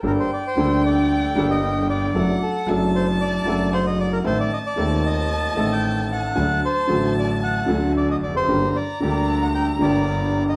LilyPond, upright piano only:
\new Staff \with { instrumentName = "Upright piano" } { \clef bass \time 4/4 \key g \minor \tempo 4 = 114 << { <g,, g, g bes d' a'>8 r8 <d, d g bes d' a'>4. <g,, g, d g bes a'>4. | <fis, fis a d' a'>8 r8 <fis, fis a d' a'>4. <fis, fis a d' a'>4. | <a,, a, ees a c' a'>8 r8 <ees,, ees, ees a c' a'>4. <a,, a, ees a c' a'>4. | <d, d fis a fis'>8 r8 <a,, a, d fis a fis'>4. <d, d fis a fis'>4. |
<g,, g, d g bes g'>8 r8 <d, d g bes g'>4. <g,, g, d g bes g'>4. | } \\ { r1 | r1 | r1 | r2. r8 r32 e,32 f,32 fis,32 |
r1 | } >> }